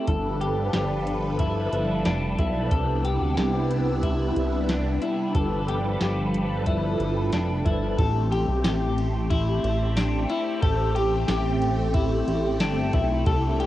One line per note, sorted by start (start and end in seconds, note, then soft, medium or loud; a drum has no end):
0.07 0.70 G1 loud
0.07 2.69 F3 medium
0.07 7.95 G3 medium
0.07 7.95 D4 medium
0.07 0.40 A4 medium
0.07 2.69 A4 medium
0.07 2.69 B4 medium
0.07 kick loud
0.07 closed hi-hat medium
0.41 0.73 G4 medium
0.41 closed hi-hat soft
0.73 1.69 G1 medium
0.73 1.39 G4 medium
0.73 snare loud
0.73 closed hi-hat medium
1.07 closed hi-hat soft
1.39 2.05 E4 medium
1.39 kick medium
1.39 closed hi-hat medium
1.73 2.04 G1 loud
1.73 closed hi-hat soft
2.05 2.37 F1 loud
2.05 2.39 D4 medium
2.05 snare loud
2.05 closed hi-hat medium
2.38 2.70 B1 loud
2.38 2.71 E4 medium
2.38 kick medium
2.38 closed hi-hat soft
2.71 3.18 C2 medium
2.71 5.32 C3 medium
2.71 5.33 B3 medium
2.71 5.33 E4 medium
2.71 3.04 A4 medium
2.71 kick loud
2.71 closed hi-hat medium
3.05 3.36 G4 medium
3.05 closed hi-hat medium
3.21 3.37 D2 medium
3.37 4.32 C2 medium
3.37 4.03 G4 medium
3.37 snare medium
3.37 closed hi-hat medium
3.71 closed hi-hat soft
4.03 4.69 E4 medium
4.03 kick medium
4.03 closed hi-hat medium
4.36 4.99 C2 medium
4.36 closed hi-hat soft
4.69 5.02 D4 medium
4.69 snare loud
4.69 closed hi-hat medium
5.02 5.35 E4 medium
5.02 closed hi-hat soft
5.35 5.98 G1 loud
5.35 7.96 F3 medium
5.35 5.68 A4 medium
5.35 7.96 A4 medium
5.35 7.96 B4 medium
5.35 kick loud
5.35 closed hi-hat medium
5.68 6.00 G4 medium
5.68 closed hi-hat medium
6.01 6.96 G1 medium
6.01 6.66 G4 medium
6.01 snare loud
6.01 closed hi-hat medium
6.34 closed hi-hat soft
6.66 7.33 E4 medium
6.66 kick medium
6.66 closed hi-hat medium
7.00 7.31 G1 medium
7.00 closed hi-hat soft
7.32 7.64 F1 medium
7.32 7.66 D4 medium
7.32 snare medium
7.32 closed hi-hat medium
7.65 7.97 G1 medium
7.65 7.98 E4 medium
7.65 kick medium
7.65 closed hi-hat soft
7.98 8.46 A1 loud
7.98 13.66 A3 medium
7.98 13.22 C4 medium
7.98 13.22 G4 medium
7.98 8.31 A4 medium
7.98 kick loud
7.98 ride medium
8.32 8.63 G4 medium
8.32 ride soft
8.48 8.64 B1 medium
8.64 9.60 A1 medium
8.64 9.30 G4 medium
8.64 snare loud
8.64 ride soft
8.64 tambourine medium
8.98 ride soft
9.30 9.96 E4 medium
9.30 kick medium
9.30 ride medium
9.64 10.26 A1 loud
9.64 ride soft
9.96 10.30 D4 medium
9.96 snare loud
9.96 ride medium
9.96 tambourine medium
10.29 10.62 E4 medium
10.29 ride soft
10.62 11.25 A1 loud
10.62 10.95 A4 loud
10.62 kick loud
10.62 ride medium
10.95 11.27 G4 medium
10.95 ride medium
11.28 12.24 A1 loud
11.28 11.94 G4 medium
11.28 snare loud
11.28 ride medium
11.28 tambourine medium
11.62 ride soft
11.94 12.60 E4 medium
11.94 kick medium
11.94 ride medium
12.28 12.62 A1 loud
12.28 ride soft
12.60 12.92 G1 medium
12.60 12.93 D4 medium
12.60 snare loud
12.60 ride medium
12.60 tambourine medium
12.93 13.25 B1 loud
12.93 13.26 E4 medium
12.93 kick loud
12.93 ride soft
13.26 13.66 C2 loud
13.26 13.66 C3 medium
13.26 13.66 G3 medium
13.26 13.66 D4 medium
13.26 13.66 E4 medium
13.26 13.59 A4 loud
13.26 kick loud
13.26 ride medium
13.60 13.66 G4 medium
13.60 ride soft